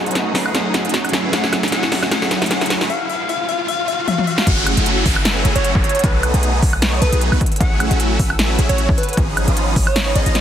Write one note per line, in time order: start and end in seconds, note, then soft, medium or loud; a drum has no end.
0.00 0.32 F#3 medium
0.00 0.33 A3 medium
0.00 0.33 D#4 medium
0.00 0.34 G#4 medium
0.00 1.12 B4 medium
0.00 0.31 F#5 medium
0.00 2.86 F#5 medium
0.00 1.12 D#6 medium
0.00 riser medium
0.06 0.33 B1 loud
0.06 0.33 F#3 medium
0.06 0.33 A3 medium
0.06 0.33 C#4 medium
0.06 0.33 D#4 medium
0.06 0.33 F#4 medium
0.06 closed hi-hat soft
0.11 closed hi-hat medium
0.15 snare medium
0.15 closed hi-hat medium
0.33 0.53 B1 medium
0.33 0.51 F#3 medium
0.33 0.53 F#3 medium
0.33 0.53 A3 medium
0.33 0.53 C#4 medium
0.33 0.53 D#4 medium
0.33 0.54 D#4 medium
0.33 0.54 G#4 loud
0.33 0.53 B4 medium
0.33 snare medium
0.33 open hi-hat loud
0.46 high woodblock medium
0.53 0.83 B1 loud
0.53 1.10 F#3 medium
0.53 0.82 F#3 loud
0.53 1.11 A3 medium
0.53 0.82 A3 medium
0.53 0.82 C#4 medium
0.53 0.82 D#4 medium
0.53 1.12 D#4 medium
0.53 0.82 G#4 loud
0.53 1.12 G#4 medium
0.53 1.10 F#5 medium
0.53 snare medium
0.53 closed hi-hat medium
0.74 snare medium
0.74 closed hi-hat medium
0.85 1.12 B1 loud
0.85 1.11 F#3 medium
0.85 1.11 A3 medium
0.85 1.11 C#4 medium
0.85 1.11 D#4 medium
0.85 1.11 F#4 medium
0.85 closed hi-hat soft
0.89 closed hi-hat medium
0.94 snare medium
0.94 closed hi-hat medium
1.05 closed hi-hat soft
1.05 high woodblock medium
1.09 1.30 F#3 loud
1.09 1.31 A3 medium
1.09 closed hi-hat medium
1.13 1.31 A1 loud
1.13 1.32 F#3 medium
1.13 2.88 A3 medium
1.13 1.32 A3 medium
1.13 1.32 C#4 medium
1.13 1.32 E4 medium
1.13 1.33 G#4 loud
1.13 1.32 B4 loud
1.13 2.88 G#5 medium
1.13 2.88 E6 medium
1.13 snare medium
1.13 closed hi-hat medium
1.31 1.69 F#3 medium
1.31 1.61 F#3 medium
1.31 1.70 A3 medium
1.31 1.61 A3 medium
1.31 1.61 C#4 medium
1.31 1.61 E4 medium
1.31 1.71 E4 medium
1.31 1.61 G#4 loud
1.31 1.71 F#5 medium
1.31 snare loud
1.31 closed hi-hat medium
1.35 1.72 G#4 medium
1.44 snare medium
1.53 snare medium
1.53 closed hi-hat medium
1.53 high woodblock medium
1.63 1.71 F#3 medium
1.63 1.71 A3 medium
1.63 1.71 C#4 medium
1.63 1.71 E4 medium
1.63 1.71 F#4 medium
1.63 snare medium
1.63 closed hi-hat soft
1.68 2.08 F#3 medium
1.68 2.10 A3 medium
1.68 closed hi-hat medium
1.72 2.00 F#3 medium
1.72 2.00 A3 medium
1.72 2.00 C#4 medium
1.72 2.00 E4 medium
1.72 2.10 E4 medium
1.72 2.00 G#4 loud
1.72 2.11 G#4 medium
1.72 2.10 F#5 medium
1.72 snare medium
1.72 closed hi-hat medium
1.83 snare medium
1.92 snare loud
1.92 open hi-hat medium
2.03 2.10 F#3 medium
2.03 2.10 A3 medium
2.03 2.10 C#4 medium
2.03 2.10 E4 medium
2.03 2.10 F#4 medium
2.03 snare medium
2.03 high woodblock medium
2.09 2.47 F#3 medium
2.09 2.39 F#3 loud
2.09 2.49 A3 medium
2.09 2.39 A3 medium
2.09 2.39 C#4 medium
2.09 2.39 E4 medium
2.09 2.50 E4 medium
2.09 2.39 G#4 loud
2.09 2.50 G#4 medium
2.09 2.49 F#5 medium
2.09 snare loud
2.09 closed hi-hat medium
2.22 snare medium
2.31 snare loud
2.31 closed hi-hat medium
2.42 2.49 A1 loud
2.42 2.49 F#3 medium
2.42 2.49 A3 medium
2.42 2.49 C#4 medium
2.42 2.49 E4 medium
2.42 2.49 F#4 medium
2.42 snare medium
2.42 closed hi-hat soft
2.46 2.87 F#3 medium
2.46 2.88 A3 medium
2.46 closed hi-hat medium
2.51 2.79 A2 loud
2.51 2.78 F#3 loud
2.51 2.78 A3 medium
2.51 2.78 C#4 medium
2.51 2.78 E4 medium
2.51 2.89 E4 medium
2.51 2.78 G#4 loud
2.51 2.89 G#4 medium
2.51 2.88 F#5 medium
2.51 snare loud
2.51 closed hi-hat medium
2.61 snare medium
2.61 closed hi-hat soft
2.66 closed hi-hat medium
2.70 snare loud
2.70 closed hi-hat medium
2.81 2.88 F#3 medium
2.81 2.88 A3 medium
2.81 2.88 C#4 medium
2.81 2.88 E4 medium
2.81 2.88 F#4 medium
2.81 snare medium
2.90 3.08 F5 medium
3.09 3.28 F5 medium
3.29 3.47 F5 medium
3.49 3.67 F5 medium
3.68 3.87 F5 loud
3.88 4.06 F5 medium
4.08 4.26 F5 medium
4.08 high tom medium
4.18 high tom medium
4.27 4.45 F5 loud
4.38 snare medium
4.47 4.75 F#1 medium
4.47 4.75 F#3 loud
4.47 4.75 A3 medium
4.47 4.75 C#4 loud
4.47 4.75 E4 medium
4.47 4.75 G#4 loud
4.47 6.02 A4 medium
4.47 5.02 F#5 medium
4.47 7.38 F#5 medium
4.47 6.02 G#5 medium
4.47 6.02 E6 loud
4.47 kick loud
4.47 closed hi-hat medium
4.47 crash loud
4.47 downlifter medium
4.66 closed hi-hat medium
4.66 high woodblock medium
4.77 5.04 F#1 loud
4.77 5.03 F#3 medium
4.77 5.03 A3 medium
4.77 5.03 C#4 medium
4.77 5.03 E4 medium
4.77 5.03 F#4 medium
4.77 closed hi-hat medium
4.86 closed hi-hat medium
5.06 5.43 F#1 medium
5.06 5.43 F#3 medium
5.06 5.43 A3 medium
5.06 5.43 C#4 medium
5.06 5.43 E4 medium
5.06 5.43 B4 medium
5.06 kick medium
5.06 open hi-hat medium
5.16 high woodblock medium
5.25 snare loud
5.25 closed hi-hat medium
5.45 5.53 F#1 loud
5.45 5.53 F#3 loud
5.45 5.53 A3 loud
5.45 5.53 C#4 loud
5.45 5.53 E4 medium
5.45 5.53 G#4 loud
5.45 closed hi-hat medium
5.56 5.73 F#1 medium
5.56 5.73 F#3 medium
5.56 5.73 A3 medium
5.56 5.73 C#4 medium
5.56 5.73 E4 medium
5.56 5.73 F#4 medium
5.56 5.69 C#5 medium
5.56 closed hi-hat medium
5.64 closed hi-hat medium
5.75 5.81 F#1 medium
5.75 5.83 F#3 loud
5.75 5.83 A3 medium
5.75 5.83 C#4 medium
5.75 5.83 E4 medium
5.75 5.83 A4 loud
5.75 kick loud
5.84 5.91 C#5 medium
5.84 closed hi-hat soft
5.89 closed hi-hat medium
5.95 6.00 C#5 medium
5.95 closed hi-hat medium
5.99 closed hi-hat medium
6.04 6.32 B1 loud
6.04 6.31 F#3 loud
6.04 6.31 A3 medium
6.04 6.31 B3 medium
6.04 6.31 D#4 medium
6.04 6.31 A4 loud
6.04 6.18 B4 loud
6.04 7.40 B4 medium
6.04 7.40 A5 medium
6.04 7.40 D#6 loud
6.04 kick loud
6.04 closed hi-hat medium
6.23 closed hi-hat medium
6.23 high woodblock medium
6.34 6.61 B1 loud
6.34 6.60 F#3 medium
6.34 6.60 A3 medium
6.34 6.60 B3 medium
6.34 6.60 D#4 medium
6.34 6.60 G#4 medium
6.34 closed hi-hat medium
6.43 closed hi-hat medium
6.62 7.00 B1 loud
6.62 7.00 F#3 medium
6.62 7.00 A3 medium
6.62 7.00 B3 medium
6.62 kick medium
6.62 open hi-hat medium
6.73 high woodblock medium
6.82 snare loud
6.82 closed hi-hat medium
7.02 7.10 B1 loud
7.02 7.10 F#3 loud
7.02 7.10 A3 medium
7.02 7.10 B3 medium
7.02 7.10 D#4 loud
7.02 7.10 A4 loud
7.02 7.32 B4 medium
7.02 closed hi-hat medium
7.12 7.30 B1 loud
7.12 7.29 F#3 medium
7.12 7.29 A3 medium
7.12 7.29 B3 medium
7.12 7.29 D#4 medium
7.12 7.29 G#4 medium
7.12 closed hi-hat medium
7.21 closed hi-hat medium
7.32 7.38 B1 loud
7.32 7.40 F#3 medium
7.32 7.40 A3 medium
7.32 7.40 B3 medium
7.32 7.40 D#4 medium
7.32 7.40 B4 loud
7.32 high woodblock medium
7.41 9.16 A4 medium
7.41 9.16 F#5 medium
7.41 9.16 G#5 medium
7.41 9.16 E6 loud
7.41 kick loud
7.41 closed hi-hat medium
7.46 closed hi-hat medium
7.52 closed hi-hat medium
7.56 closed hi-hat medium
7.60 7.89 A1 loud
7.60 7.88 F#3 loud
7.60 7.88 A3 medium
7.60 7.88 C#4 medium
7.60 7.88 E4 medium
7.60 7.88 G#4 loud
7.60 8.16 F#5 medium
7.60 kick loud
7.60 closed hi-hat medium
7.80 closed hi-hat medium
7.80 high woodblock medium
7.91 8.18 A1 loud
7.91 8.17 F#3 medium
7.91 8.17 A3 medium
7.91 8.17 C#4 medium
7.91 8.17 E4 medium
7.91 8.17 F#4 medium
7.91 closed hi-hat medium
8.00 closed hi-hat medium
8.19 8.57 A1 loud
8.19 8.56 F#3 medium
8.19 8.56 A3 medium
8.19 8.56 C#4 medium
8.19 8.56 E4 medium
8.19 8.56 B4 medium
8.19 kick medium
8.19 open hi-hat medium
8.30 high woodblock medium
8.39 snare loud
8.39 closed hi-hat medium
8.59 8.67 A1 loud
8.59 8.67 F#3 loud
8.59 8.67 A3 medium
8.59 8.67 C#4 loud
8.59 8.67 E4 loud
8.59 8.67 G#4 loud
8.59 closed hi-hat medium
8.69 8.87 A1 loud
8.69 8.86 F#3 medium
8.69 8.86 A3 medium
8.69 8.86 C#4 medium
8.69 8.86 E4 medium
8.69 8.86 F#4 medium
8.69 8.83 C#5 medium
8.69 closed hi-hat medium
8.78 closed hi-hat medium
8.89 8.95 A1 loud
8.89 8.97 F#3 medium
8.89 8.97 A3 medium
8.89 8.97 C#4 medium
8.89 8.97 E4 medium
8.89 8.97 A4 loud
8.89 kick loud
8.98 9.13 B4 loud
8.98 closed hi-hat medium
9.03 closed hi-hat medium
9.09 closed hi-hat soft
9.13 closed hi-hat medium
9.17 9.46 G#1 loud
9.17 9.45 F3 loud
9.17 9.45 B3 medium
9.17 9.45 C#4 loud
9.17 9.45 D#4 loud
9.17 9.45 G#4 loud
9.17 10.41 C#5 medium
9.17 10.41 F5 medium
9.17 10.41 B5 medium
9.17 10.41 D#6 loud
9.17 kick loud
9.17 closed hi-hat medium
9.37 closed hi-hat medium
9.37 high woodblock medium
9.48 9.74 G#1 loud
9.48 9.74 F3 medium
9.48 9.74 B3 medium
9.48 9.74 C#4 medium
9.48 9.74 D#4 medium
9.48 9.74 F4 medium
9.48 closed hi-hat medium
9.57 closed hi-hat medium
9.76 10.14 G#1 loud
9.76 10.13 F3 medium
9.76 10.13 B3 medium
9.76 10.13 C#4 medium
9.76 10.13 D#4 medium
9.76 10.13 C#5 medium
9.76 kick medium
9.76 open hi-hat medium
9.87 10.14 C#5 medium
9.87 high woodblock medium
9.96 snare loud
9.96 closed hi-hat medium
10.15 10.24 G#1 medium
10.15 10.24 F3 loud
10.15 10.24 B3 loud
10.15 10.24 C#4 loud
10.15 10.24 D#4 medium
10.15 10.24 G#4 loud
10.15 10.41 D#5 medium
10.15 closed hi-hat medium
10.26 10.41 G#1 medium
10.26 10.41 F3 medium
10.26 10.41 B3 medium
10.26 10.41 C#4 medium
10.26 10.41 D#4 medium
10.26 10.41 F4 medium
10.26 closed hi-hat medium
10.35 snare medium
10.35 closed hi-hat medium